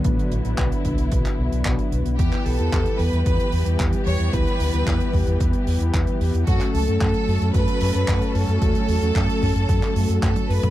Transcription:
<<
  \new Staff \with { instrumentName = "Violin section" } { \time 4/4 \key e \dorian \tempo 4 = 112 r1 | g'8 a'4 b'8 b'4 r8 cis''8 | b'2 r2 | fis'8 a'8 a'4 b'4. a'8~ |
a'2. a'8 b'8 | }
  \new Staff \with { instrumentName = "Analog polysynth" } { \time 4/4 \key e \dorian <b d' fis' b'>8. <b d' fis' b'>2.~ <b d' fis' b'>16 | <b e' g' b'>8. <b e' g' b'>2.~ <b e' g' b'>16 | <b e' g' b'>8. <b e' g' b'>2.~ <b e' g' b'>16 | <a cis' fis' a'>8. <a cis' fis' a'>2.~ <a cis' fis' a'>16 |
<a cis' fis' a'>8. <a cis' fis' a'>4.~ <a cis' fis' a'>16 <a cis' fis' a'>4. | }
  \new Staff \with { instrumentName = "String section" } { \time 4/4 \key e \dorian <d fis b e'>1 | <e g b g'>1~ | <e g b g'>1 | <fis a cis' a'>1~ |
<fis a cis' a'>1 | }
  \new Staff \with { instrumentName = "Fingered electric bass" } { \clef bass \time 4/4 \key e \dorian a,,16 r16 a,,16 a,,16 b,,16 r16 b,,16 b,,16 b,,16 r16 b,,16 b,,16 b,,16 r16 b,,16 b,,16 | e,16 r16 b,,16 e,16 e,16 r16 e,16 e,16 e,16 r16 e,16 e,16 e,16 r16 e,16 e,16 | d,16 r16 d,16 d,16 e,16 r16 e,16 e,16 e,16 r16 e,16 e,16 e,16 r16 e,16 e,16 | fis,16 r16 cis,16 fis,16 fis,16 r16 fis,16 fis,16 fis,16 r16 fis,16 fis,16 fis,16 r16 fis,16 fis,16 |
e,16 r16 e,16 e,16 fis,16 r16 fis,16 fis,16 fis,16 r16 fis,16 fis,16 fis,16 r16 fis,16 fis,16 | }
  \new DrumStaff \with { instrumentName = "Drums" } \drummode { \time 4/4 <hh bd>16 hh16 hh16 hh16 <hc hh bd>16 hh16 <hh bd>16 hh16 <hh bd>16 <hc hh>8 hh16 <hc hh bd>16 hh16 hh16 hh16 | <hh bd>16 <hc hh>16 hho16 hh16 <hc hh bd>16 hh16 hho16 hh16 <hh bd>16 hh16 hho16 hh16 <hc hh bd>16 hh16 hho16 hh16 | <hh bd>16 hh16 hho16 hh16 <hc hh bd>16 hh16 <hho bd>16 hh16 <hh bd>16 hh16 hho16 hh16 <hc hh bd>16 hh16 hho16 hh16 | <hh bd>16 <hc hh>16 hho16 hh16 <hc hh bd>16 hh16 hho16 hh16 <hh bd>16 hh16 hho16 hh16 <hc hh bd>16 hh16 hho16 hh16 |
<hh bd>16 hh16 hho16 hh16 <hc hh bd>16 hh16 <hho bd>16 hh16 <hh bd>16 <hc hh>16 hho16 hh16 <hc hh bd tommh>16 <hh tommh>16 hho16 <hh toml>16 | }
>>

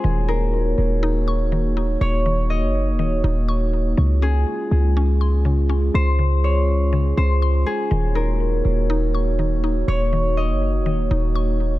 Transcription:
<<
  \new Staff \with { instrumentName = "Harp" } { \time 4/4 \key ees \dorian \tempo 4 = 122 r8 bes'8 r2. | des''4 ees''2 r4 | r8 aes'8 r2. | c''4 des''4. c''4 aes'8 |
r8 bes'8 r2. | des''4 ees''2 r4 | }
  \new Staff \with { instrumentName = "Glass harmonica" } { \time 4/4 \key ees \dorian <bes ees' ges' des''>1~ | <bes ees' ges' des''>1 | <aes des' f' aes'>1~ | <aes des' f' aes'>1 |
<bes ees' ges' des''>1~ | <bes ees' ges' des''>1 | }
  \new Staff \with { instrumentName = "Synth pluck" } { \time 4/4 \key ees \dorian ees8 ees'4. ees'8 des'''8 ees8 ees'8~ | ees'8 ees4. ees8 ees'8 des'''4 | des8 des'4. des'8 c'''8 des8 des'8~ | des'8 des4. des8 des'8 c'''4 |
ees8 ees'4. ees'8 des'''8 ees8 ees'8~ | ees'8 ees4. ees8 ees'8 des'''4 | }
  \new Staff \with { instrumentName = "808-style bass" } { \clef bass \time 4/4 \key ees \dorian ees,,4. ees,,2~ ees,,8 | ees,,4~ ees,,16 ges,,8~ ges,,32 ees,,8~ ees,,32 ees,,4. | des,4 r8 des,2~ des,8 | des,2~ des,8 des,4 r8 |
ees,,4. ees,,2~ ees,,8 | ees,,4~ ees,,16 ges,,8~ ges,,32 ees,,8~ ees,,32 ees,,4. | }
>>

